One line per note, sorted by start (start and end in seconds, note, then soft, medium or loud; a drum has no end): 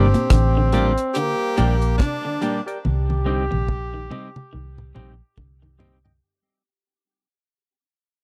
0.00 0.13 G1 loud
0.00 1.20 C4 loud
0.00 0.69 G4 medium
0.14 0.26 A#2 medium
0.14 closed hi-hat soft
0.30 0.95 A1 loud
0.30 0.49 D3 medium
0.30 kick loud
0.30 cross-stick loud
0.30 closed hi-hat loud
0.57 0.69 D3 medium
0.72 0.91 A#2 medium
0.72 0.91 G3 medium
0.72 0.91 A#3 medium
0.72 0.91 D4 medium
0.72 0.93 F4 medium
0.72 0.89 G4 medium
0.72 0.92 G4 medium
0.72 0.89 A#4 medium
0.72 0.89 D5 medium
0.72 0.90 G5 medium
0.72 closed hi-hat medium
0.98 closed hi-hat medium
1.14 1.33 D3 loud
1.14 1.95 G4 loud
1.14 closed hi-hat medium
1.19 2.04 A#3 loud
1.56 1.98 A#1 loud
1.56 1.75 A#2 medium
1.56 1.75 G3 medium
1.56 1.75 A#3 loud
1.56 1.75 D4 medium
1.56 1.73 G4 loud
1.56 1.76 G4 loud
1.56 1.74 A#4 medium
1.56 1.74 D5 medium
1.56 1.74 G5 loud
1.56 closed hi-hat medium
1.82 closed hi-hat medium
1.98 2.17 C3 medium
1.98 2.62 D4 loud
1.98 kick loud
1.98 cross-stick loud
1.98 closed hi-hat medium
2.03 2.62 D4 loud
2.25 2.37 D3 medium
2.41 2.60 A#2 medium
2.41 2.60 G3 medium
2.41 2.60 A#3 medium
2.41 2.60 D4 medium
2.41 2.58 G4 loud
2.41 2.60 G4 medium
2.41 2.58 A#4 medium
2.41 2.58 D5 medium
2.41 2.58 G5 loud
2.41 closed hi-hat medium
2.66 2.78 G4 medium
2.66 2.78 A#4 medium
2.66 2.78 D5 medium
2.66 2.78 G5 medium
2.66 closed hi-hat soft
2.85 3.49 C2 loud
2.85 5.35 G4 loud
2.85 high tom medium
3.10 high tom medium
3.25 3.44 D3 medium
3.25 3.44 G3 medium
3.25 3.44 C4 medium
3.25 3.44 D#4 loud
3.25 3.42 G4 medium
3.25 3.44 G4 medium
3.25 3.42 C5 medium
3.25 3.43 D#5 medium
3.25 3.43 G5 loud
3.51 4.09 A#1 medium
3.51 3.63 C3 medium
3.51 high tom medium
3.69 kick loud
3.69 mid tom medium
3.94 4.06 D#3 medium
4.10 4.28 C3 medium
4.10 4.28 G3 medium
4.10 4.29 C4 medium
4.10 4.29 D#4 medium
4.10 4.27 G4 medium
4.10 4.29 G4 medium
4.10 4.27 C5 medium
4.10 4.27 D#5 medium
4.10 4.28 G5 medium
4.10 mid tom medium
4.36 mid tom medium
4.53 4.94 C2 medium
4.53 4.70 D#3 medium
4.78 mid tom medium
4.95 5.20 A#1 medium
4.95 5.13 C3 medium
4.95 5.13 G3 medium
4.95 5.13 C4 medium
4.95 5.13 D#4 medium
4.95 5.11 G4 medium
4.95 5.13 G4 medium
4.95 5.12 C5 medium
4.95 5.12 D#5 medium
4.95 5.12 G5 loud
4.95 mid tom loud
5.38 6.19 C2 loud
5.38 5.55 D3 medium
5.38 kick loud
5.38 floor tom medium
5.62 5.74 D#3 medium
5.62 floor tom medium
5.78 5.97 A#2 medium
5.78 5.97 G3 medium
5.78 5.97 C4 medium
5.78 5.97 D#4 medium
5.78 5.95 G4 loud
5.78 5.98 G4 medium
5.78 5.96 C5 loud
5.78 5.96 D#5 medium
5.78 5.96 G5 loud
5.78 floor tom loud
6.04 6.12 D#5 soft
6.04 6.12 G5 soft
6.04 floor tom medium